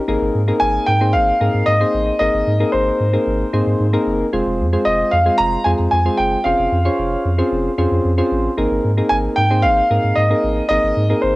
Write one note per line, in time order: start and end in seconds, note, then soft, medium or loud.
0.08 0.17 G#1 loud
0.08 0.41 A#3 medium
0.08 0.41 C4 medium
0.08 0.41 D#4 medium
0.08 0.41 G#4 medium
0.08 0.42 A#4 loud
0.21 0.30 G#1 loud
0.35 0.52 G#2 loud
0.48 0.92 A#3 medium
0.48 0.92 C4 medium
0.48 0.92 D#4 medium
0.48 0.92 G#4 medium
0.48 0.92 A#4 medium
0.60 0.79 G#1 loud
0.60 0.88 G#5 loud
0.86 1.16 G#2 loud
0.86 1.12 G5 loud
1.01 1.34 A#3 medium
1.01 1.34 C4 medium
1.01 1.34 D#4 medium
1.01 1.34 G#4 medium
1.01 1.34 C5 medium
1.13 1.32 G#1 loud
1.13 1.68 F5 loud
1.41 1.50 G#2 loud
1.41 1.74 A#3 medium
1.41 1.74 C4 medium
1.41 1.74 D#4 medium
1.41 1.74 G#4 medium
1.41 1.74 A#4 medium
1.54 1.63 G#2 medium
1.66 1.85 G#2 loud
1.66 2.18 D#5 loud
1.81 2.14 A#3 medium
1.81 2.14 C4 medium
1.81 2.14 D#4 medium
1.81 2.14 G#4 medium
1.81 2.14 C5 medium
1.94 2.11 A1 medium
2.19 2.29 G#1 loud
2.19 2.54 A#3 medium
2.19 2.54 C4 medium
2.19 2.54 D#4 medium
2.19 2.54 G#4 medium
2.19 2.54 A#4 medium
2.19 2.69 D#5 medium
2.34 2.43 G#1 loud
2.47 2.64 G#2 loud
2.60 3.05 A#3 medium
2.60 3.05 C4 medium
2.60 3.05 D#4 medium
2.60 3.05 G#4 medium
2.60 3.05 A#4 medium
2.72 2.91 G#1 loud
2.72 4.02 C5 medium
3.00 3.18 G#2 loud
3.13 3.47 A#3 medium
3.13 3.47 C4 medium
3.13 3.47 D#4 medium
3.13 3.47 G#4 medium
3.13 3.47 A#4 medium
3.27 3.44 G#1 loud
3.53 3.62 G#2 loud
3.53 3.86 A#3 medium
3.53 3.86 C4 medium
3.53 3.87 D#4 medium
3.53 3.87 G#4 medium
3.53 3.87 C5 loud
3.67 3.75 G#2 loud
3.80 3.97 G#2 loud
3.93 4.26 A#3 loud
3.93 4.26 C4 medium
3.93 4.26 D#4 medium
3.93 4.26 G#4 medium
3.93 4.26 A#4 loud
4.07 4.24 F#1 medium
4.33 4.42 F1 loud
4.33 4.66 G#3 medium
4.33 4.66 C4 medium
4.33 4.66 F4 medium
4.33 4.66 G#4 medium
4.33 4.66 C5 loud
4.46 4.61 F1 loud
4.60 4.77 F2 loud
4.73 5.17 G#3 medium
4.73 5.17 C4 medium
4.73 5.17 F4 medium
4.73 5.17 G#4 medium
4.73 5.17 C5 medium
4.85 5.03 F1 loud
4.85 5.13 D#5 loud
5.11 5.30 F2 loud
5.11 5.39 F5 loud
5.26 5.59 G#3 medium
5.26 5.59 C4 medium
5.26 5.59 F4 medium
5.26 5.59 G#4 medium
5.26 5.59 C5 medium
5.38 5.57 F1 loud
5.38 5.63 A#5 loud
5.64 5.74 F2 loud
5.64 5.99 G#3 medium
5.64 5.99 C4 medium
5.64 5.99 F4 medium
5.64 5.99 G#4 medium
5.64 5.99 C5 medium
5.64 5.70 G#5 loud
5.79 5.88 F2 loud
5.91 6.10 F2 medium
5.91 6.19 G#5 loud
6.05 6.39 G#3 medium
6.05 6.39 C4 medium
6.05 6.39 F4 medium
6.05 6.39 G#4 medium
6.05 6.39 C5 medium
6.17 6.36 F#1 medium
6.17 6.45 G5 medium
6.44 6.54 F1 loud
6.44 6.78 C4 medium
6.44 6.79 C#4 medium
6.44 6.79 F4 medium
6.44 6.79 G#4 medium
6.44 6.79 C5 medium
6.44 7.47 F5 medium
6.59 6.67 F1 loud
6.72 6.89 F2 loud
6.85 7.29 C#4 medium
6.85 7.30 F4 medium
6.85 7.30 G#4 medium
6.85 7.29 C5 medium
6.85 7.30 C#5 medium
6.99 7.16 F1 loud
7.25 7.42 F2 loud
7.38 7.71 C4 medium
7.38 7.71 C#4 medium
7.38 7.72 F4 medium
7.38 7.72 G#4 medium
7.38 7.72 C5 loud
7.52 7.69 F1 loud
7.78 7.87 F2 loud
7.78 8.11 C4 medium
7.78 8.11 C#4 medium
7.78 8.11 F4 medium
7.78 8.11 G#4 medium
7.78 8.11 C5 loud
7.91 8.00 F2 loud
8.05 8.22 F2 loud
8.18 8.51 C4 medium
8.18 8.51 C#4 medium
8.18 8.51 F4 medium
8.18 8.51 G#4 medium
8.18 8.51 C5 loud
8.31 8.49 A1 medium
8.57 8.66 G#1 loud
8.57 8.91 A#3 medium
8.57 8.91 C4 medium
8.57 8.91 D#4 medium
8.57 8.91 G#4 medium
8.57 8.91 A#4 loud
8.71 8.80 G#1 loud
8.84 9.02 G#2 loud
8.97 9.42 A#3 medium
8.97 9.42 C4 medium
8.97 9.42 D#4 medium
8.97 9.42 G#4 medium
8.97 9.42 A#4 medium
9.09 9.28 G#1 loud
9.09 9.16 G#5 loud
9.36 9.66 G#2 loud
9.36 9.64 G5 loud
9.50 9.84 A#3 medium
9.50 9.84 C4 medium
9.50 9.84 D#4 medium
9.50 9.84 G#4 medium
9.50 9.84 C5 medium
9.62 9.81 G#1 loud
9.62 10.18 F5 loud
9.90 9.99 G#2 loud
9.90 10.24 A#3 medium
9.90 10.24 C4 medium
9.90 10.24 D#4 medium
9.90 10.24 G#4 medium
9.90 10.24 A#4 medium
10.04 10.12 G#2 medium
10.15 10.34 G#2 loud
10.15 10.67 D#5 medium
10.30 10.63 A#3 medium
10.30 10.63 C4 medium
10.30 10.64 D#4 medium
10.30 10.64 G#4 medium
10.30 10.64 A#4 medium
10.44 10.61 A1 medium
10.69 10.79 G#1 loud
10.69 11.03 A#3 medium
10.69 11.03 C4 medium
10.69 11.03 D#4 medium
10.69 11.03 G#4 medium
10.69 11.04 A#4 medium
10.69 11.19 D#5 loud
10.83 10.92 G#1 medium
10.97 11.14 G#2 loud
11.10 11.36 A#3 medium
11.10 11.36 C4 medium
11.10 11.36 D#4 medium
11.10 11.36 G#4 medium
11.10 11.36 A#4 medium
11.22 11.36 G#1 loud
11.22 11.36 C5 medium